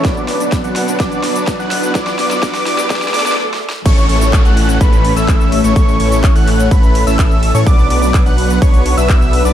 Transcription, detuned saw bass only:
\new Staff \with { instrumentName = "Detuned saw bass" } { \clef bass \time 4/4 \key a \major \tempo 4 = 126 b,,8 b,,8. b,,8. b,,8 b,,8. b,,8. | b,,8 b,,8 b,,8 b,,8 b,,8 b,,8 r4 | a,,8 a,,8. a,,8. a,,8. a,,4 a,,16 | a,,8 a,,8. a,,8. a,,8. a,,4 a,16 |
b,,8 b,,8. b,,8. b,,8. b,,4 b,,16 | }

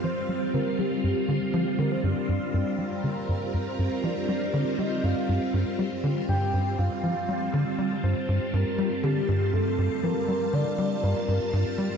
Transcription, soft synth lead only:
\new Staff \with { instrumentName = "Soft synth lead" } { \time 4/4 \key g \minor \tempo 4 = 120 c''4 bes'8 g'4. r8 bes'16 c''16 | d''4 d''8. c''16 bes'4 c''4 | d''4. ees''8 f''4. r8 | r8 g''4 f''8 f''4 r4 |
c''4 bes'4 g'4 a'4 | bes'4 d''4 bes'4. r8 | }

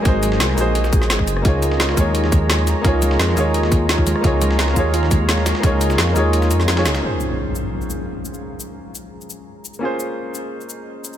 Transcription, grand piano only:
\new Staff \with { instrumentName = "Grand piano" } { \time 4/4 \key bes \minor \tempo 4 = 172 <bes ees' ges' aes' c''>4. <bes ees' ges' aes' c''>2~ <bes ees' ges' aes' c''>8 | <bes ees' f' aes' des''>4. <bes ees' f' aes' des''>2~ <bes ees' f' aes' des''>8 | <bes ees' f' aes' des''>4. <bes ees' f' aes' des''>2~ <bes ees' f' aes' des''>8 | <bes ees' f' aes' des''>4. <bes ees' f' aes' des''>2~ <bes ees' f' aes' des''>8 |
<bes ees' f' aes' des''>4. <bes ees' f' aes' des''>4.~ <bes ees' f' aes' des''>16 <bes ees' f' aes' des''>8. | <bes des' f' aes' c''>1~ | <bes des' f' aes' c''>1 | <bes des' f' aes' c''>1 | }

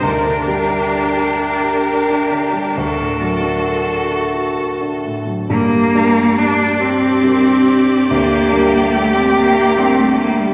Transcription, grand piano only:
\new Staff \with { instrumentName = "Grand piano" } { \time 12/8 \key g \minor \tempo 4. = 45 d,16 d16 g16 d'16 bes'16 g'16 bes'16 g'16 bes'16 d'16 d16 g16 d,16 a,16 fis16 d'16 a'16 fis'16 a'16 fis'16 a'16 d'16 a,16 fis16 | g,8 <g d' bes'>4. <g d' bes'>4 d,8 <g d' bes'>4. <g d' bes'>4 | }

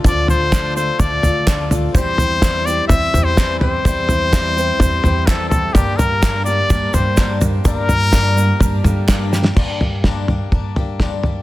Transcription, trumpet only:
\new Staff \with { instrumentName = "Trumpet" } { \time 4/4 \key g \dorian \tempo 4 = 126 d''8 c''4 c''8 d''4. r8 | c''4. d''8 e''8. c''8. c''8~ | c''2. a'8 a'8 | g'8 bes'4 d''4 c''4 r8 |
bes'2. r4 | r1 | }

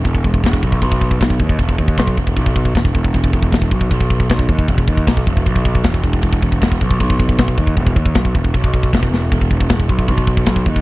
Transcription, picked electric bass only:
\new Staff \with { instrumentName = "Picked electric bass" } { \clef bass \time 4/4 \key c \lydian \tempo 4 = 155 e,,8 e,,8 e,,8 b,,8 b,,4 b,,8 dis,8 | e,,8 dis,8 b,,8 e,,8 b,,4 e,,8 e,,8 | e,,8 e,,8 e,,8 b,,8 b,,4 b,,8 dis,8 | e,,8 dis,8 b,,8 e,,8 b,,4 e,,8 e,,8 |
e,,8 e,,8 e,,8 b,,8 b,,4 b,,8 dis,8 | e,,8 dis,8 b,,8 e,,8 b,,4 e,,8 e,,8 | e,,8 e,,8 e,,8 b,,8 b,,4 b,,8 dis,8 | }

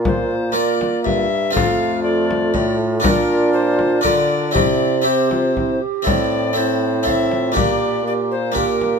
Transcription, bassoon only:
\new Staff \with { instrumentName = "Bassoon" } { \clef bass \time 3/4 \key bes \lydian \tempo 4 = 120 bes,4. r8 g,4 | f,2 a,4 | bes,2 d4 | c2~ c8 r8 |
a,2. | bes,2. | }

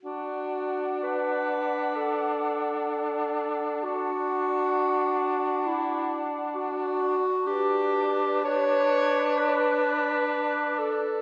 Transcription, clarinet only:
\new Staff \with { instrumentName = "Clarinet" } { \time 4/4 \key d \major \tempo 4 = 64 fis'4 b'4 a'2 | fis'2 e'8 r8 fis'4 | g'4 cis''4 b'4. a'8 | }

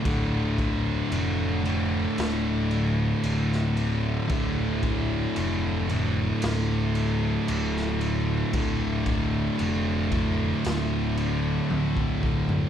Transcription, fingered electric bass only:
\new Staff \with { instrumentName = "Fingered electric bass" } { \clef bass \time 4/4 \key c \mixolydian \tempo 4 = 57 d,,4 f,,4 d,,4 d,,4 | d,,4 f,,4 d,,4 d,,4 | d,,4 f,,4 d,,4 d,,4 | }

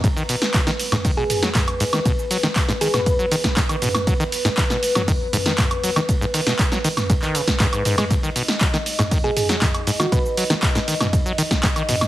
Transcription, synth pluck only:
\new Staff \with { instrumentName = "Synth pluck" } { \time 4/4 \key gis \minor \tempo 4 = 119 r2 r16 gis'16 gis'16 r4 r16 | r4. gis'16 b'16 b'16 r4. r16 | r1 | r1 |
r2 r16 gis'16 gis'16 r4 fis'16 | b'8. r2. r16 | }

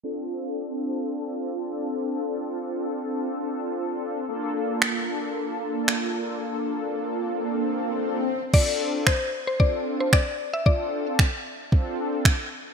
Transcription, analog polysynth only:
\new Staff \with { instrumentName = "Analog polysynth" } { \time 4/4 \key d \minor \tempo 4 = 113 <c' d' f' a'>1~ | <c' d' f' a'>1 | <bes d' f' a'>1~ | <bes d' f' a'>2.~ <bes d' f' a'>8 r8 |
<c' d' f' a'>4 r4 <c' d' f' a'>4 r4 | <c' d' f' a'>4 r4 <c' d' f' a'>4 r4 | }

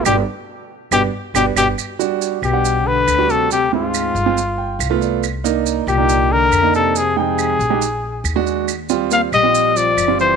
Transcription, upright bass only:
\new Staff \with { instrumentName = "Upright bass" } { \clef bass \time 4/4 \key c \lydian \tempo 4 = 139 g,,8 r4. g,,8 r8 g,,8 g,,8 | r4. b,,4. d,4~ | d,4. g,,4. c,4~ | c,4. c,4. f,4~ |
f,4. bes,,4. ees,4~ | ees,4. bes,,4. fis,,4 | }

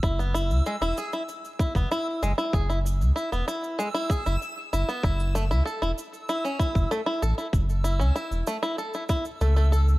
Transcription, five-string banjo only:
\new Staff \with { instrumentName = "Five-string banjo" } { \time 4/4 \key e \mixolydian \tempo 4 = 96 e'16 b16 e'8 gis16 e'16 gis'16 e'16 r8 e'16 b16 e'8 gis16 e'16 | gis'16 e'16 r8 e'16 b16 e'8 gis16 e'16 gis'16 e'16 r8 e'16 b16 | e'8 a16 e'16 a'16 e'16 r8 e'16 cis'16 e'8 a16 e'16 a'16 e'16 | r8 e'16 cis'16 e'8 a16 e'16 a'16 e'16 e'16 r16 a16 a16 a'16 r16 | }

